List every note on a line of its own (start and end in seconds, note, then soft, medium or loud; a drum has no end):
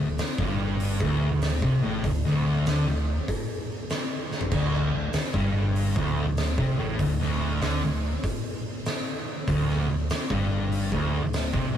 0.00 0.17 D1 medium
0.00 0.14 D2 medium
0.18 snare loud
0.18 open hi-hat medium
0.38 0.96 G1 loud
0.38 1.00 G2 medium
0.38 kick loud
0.80 open hi-hat medium
1.00 1.29 D1 loud
1.00 1.30 D2 loud
1.00 kick loud
1.32 1.61 D1 medium
1.32 1.54 D2 medium
1.42 snare loud
1.42 open hi-hat medium
1.62 1.81 C2 medium
1.62 1.81 C3 loud
1.62 kick loud
1.83 2.03 A1 medium
1.83 2.03 A2 loud
2.04 2.23 D1 medium
2.04 2.24 D2 medium
2.04 kick medium
2.04 open hi-hat medium
2.25 2.64 D1 medium
2.25 2.66 D2 loud
2.25 snare soft
2.66 2.86 D2 medium
2.66 2.86 D3 loud
2.66 snare loud
2.66 open hi-hat medium
2.87 3.16 D1 medium
2.87 3.13 D2 medium
3.28 kick loud
3.28 open hi-hat medium
3.90 snare loud
3.90 open hi-hat medium
4.32 snare medium
4.41 floor tom medium
4.51 4.90 D1 medium
4.51 4.91 D2 loud
4.51 kick loud
4.51 crash medium
4.51 splash medium
4.73 snare soft
4.93 5.13 D1 medium
4.93 5.10 D2 medium
5.13 snare loud
5.13 open hi-hat medium
5.34 5.92 G1 loud
5.34 5.95 G2 medium
5.34 kick loud
5.34 snare soft
5.76 open hi-hat medium
5.96 6.25 D1 loud
5.96 6.27 D2 loud
5.96 kick loud
6.28 6.56 D1 medium
6.28 6.50 D2 medium
6.37 snare loud
6.37 open hi-hat medium
6.58 6.77 C2 medium
6.58 6.77 C3 loud
6.58 kick loud
6.79 6.98 A1 medium
6.79 6.99 A2 loud
6.99 7.18 D1 medium
6.99 7.19 D2 medium
6.99 kick medium
6.99 open hi-hat medium
7.20 7.59 D1 medium
7.20 7.61 D2 loud
7.20 snare soft
7.61 7.81 D2 medium
7.61 7.81 D3 medium
7.61 snare loud
7.61 open hi-hat medium
7.82 8.11 D1 medium
7.82 8.09 D2 medium
8.24 kick loud
8.24 open hi-hat medium
8.86 snare loud
8.86 open hi-hat medium
9.48 9.86 D1 loud
9.48 9.87 D2 loud
9.48 kick loud
9.48 open hi-hat medium
9.70 snare soft
9.89 10.09 D1 medium
9.89 10.05 D2 medium
10.10 snare loud
10.10 open hi-hat medium
10.30 10.88 G1 medium
10.30 10.91 G2 loud
10.30 kick loud
10.72 open hi-hat medium
10.92 11.20 D1 loud
10.92 11.22 D2 loud
10.92 kick loud
11.24 11.52 D1 medium
11.24 11.46 D2 medium
11.33 snare loud
11.33 open hi-hat medium
11.54 11.72 C2 loud
11.54 11.73 C3 loud
11.54 kick loud
11.74 11.78 A1 medium